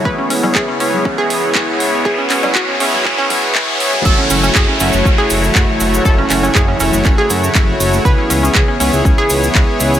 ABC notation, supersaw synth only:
X:1
M:4/4
L:1/8
Q:1/4=120
K:F#m
V:1 name="Supersaw synth"
[B,EGc]3 [B,EGc]3 [B,EGc]2 | [B,Ec]3 [B,EGc]3 [B,EGc]2 | [A,EFc]3 [A,EFc]3 [A,EFc]2 | [EFc]3 [A,EFc]3 [A,EFc]2 |
[B,EGc]3 [B,EGc]3 [B,EG]2 |]